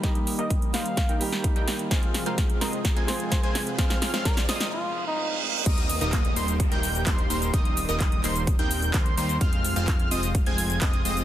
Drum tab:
CC |----------------|----------------|----------------|x---------------|
HH |xxoxxxoxxxoxxxox|xxoxxxoxxxoxxxox|xxoxxxox--------|xxoxxxoxxxoxxxox|
SH |----------------|----------------|----------------|x-xxx-xxx-xxx-xx|
CP |----------------|----------------|----------------|----x-------x---|
SD |o-----o-o--o--o-|o-o-o-o-o-o-o-o-|oooooooo--------|----------------|
BD |o---o---o---o---|o---o---o---o---|o---o-----------|o---o---o---o---|

CC |----------------|----------------|
HH |xxoxxxoxxxoxxxox|xxoxxxoxxxoxxxox|
SH |x-xxx-xxx-xxx-xx|x-xxx-xxx-xxx-xx|
CP |----x-x-----x---|----x-------x---|
SD |----------------|----------------|
BD |o---o---o---o---|o---o---o---o---|